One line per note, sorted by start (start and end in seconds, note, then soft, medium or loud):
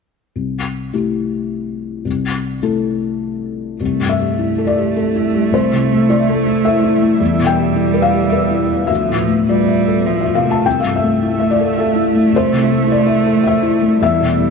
0.36 0.92 C2 soft
0.93 2.01 A3 soft
0.93 2.02 E4 soft
0.93 2.02 G4 soft
2.05 2.60 C2 soft
2.62 3.76 A3 soft
2.62 3.76 E4 soft
2.62 3.77 A4 soft
3.80 5.48 C2 soft
3.80 7.17 A3 soft
3.80 8.86 E4 medium
3.80 8.86 E5 soft
3.99 4.30 G2 soft
4.09 4.63 E5 soft
4.19 4.50 G3 soft
4.39 4.69 E4 soft
4.58 4.88 A4 soft
4.67 4.93 D5 medium
4.78 5.07 G4 soft
4.96 5.26 A4 soft
5.15 5.45 E4 soft
5.34 5.52 G3 soft
5.52 7.16 C2 soft
5.52 6.06 C5 medium
5.73 6.02 C3 soft
5.92 6.21 A3 soft
6.10 6.39 E4 soft
6.10 6.61 D5 soft
6.29 6.58 A4 soft
6.47 6.76 E4 soft
6.65 6.95 A4 soft
6.65 7.16 E5 medium
6.84 7.13 E4 soft
7.01 7.20 A3 soft
7.20 8.85 E2 soft
7.20 8.85 G3 medium
7.20 8.89 B3 medium
7.39 7.68 B2 soft
7.47 7.99 G5 medium
7.58 7.87 G3 soft
7.76 8.06 E4 soft
7.94 8.24 B4 soft
8.02 8.29 F5 medium
8.14 8.43 G4 soft
8.30 8.62 B4 soft
8.30 8.84 E5 soft
8.51 8.81 E4 soft
8.70 8.89 G3 soft
8.87 10.61 D2 soft
8.87 9.38 F3 soft
8.87 14.02 A3 medium
8.87 10.66 F4 medium
8.87 9.43 E5 medium
8.87 13.98 E5 medium
9.09 9.41 A2 soft
9.28 9.60 A3 soft
9.47 10.08 G3 medium
9.47 9.80 F4 soft
9.47 10.03 D5 soft
9.68 9.99 E5 soft
9.87 10.19 A4 soft
10.06 10.38 F3 soft
10.06 10.20 E5 soft
10.21 10.35 E5 soft
10.26 10.57 F4 soft
10.35 10.64 C3 soft
10.35 10.49 F5 medium
10.46 10.65 A3 soft
10.51 10.64 A5 soft
10.64 12.30 C2 soft
10.64 13.97 A3 soft
10.64 14.50 E4 medium
10.64 10.79 G5 medium
10.80 11.14 G2 soft
10.80 10.93 F5 soft
10.96 11.38 E5 soft
11.02 11.33 A3 soft
11.23 11.52 E4 soft
11.40 11.70 E5 soft
11.51 11.77 D5 medium
11.59 11.78 A4 soft
11.78 12.31 A4 soft
11.78 12.08 E5 soft
11.96 12.26 E4 soft
12.15 12.34 A3 soft
12.32 13.96 C2 soft
12.32 12.87 C5 medium
12.53 12.82 C3 soft
12.70 13.00 A3 soft
12.88 13.18 E4 soft
12.92 13.43 D5 medium
13.07 13.37 E5 soft
13.26 13.56 A4 soft
13.44 13.46 E5 soft
13.44 13.98 E5 medium
13.63 13.93 E4 soft
13.81 14.00 A3 soft
14.01 14.50 E2 soft
14.01 14.50 G3 medium
14.01 14.50 E5 medium
14.20 14.50 B2 soft
14.38 14.50 G3 soft